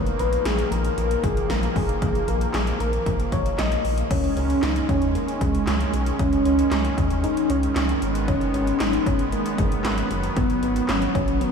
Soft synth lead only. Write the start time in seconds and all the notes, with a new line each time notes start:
Already playing: A#4
0.20 B4
0.46 G#4
0.72 A#4
0.98 A#4
1.24 G#4
1.50 A#4
1.76 G#4
2.28 A#4
2.54 G#4
2.81 A#4
3.33 C#5
3.59 D#5
4.11 C#4
4.37 C#4
4.63 D#4
4.89 C#4
5.15 A#3
5.41 G#3
6.20 C#4
6.46 C#4
7.24 D#4
7.50 C#4
8.21 D#4
8.28 C#4
8.54 C#4
8.80 D#4
9.07 C#4
9.33 A#3
9.59 G#3
10.37 B3
10.63 B3
10.89 C#4
11.15 C#4
11.41 B3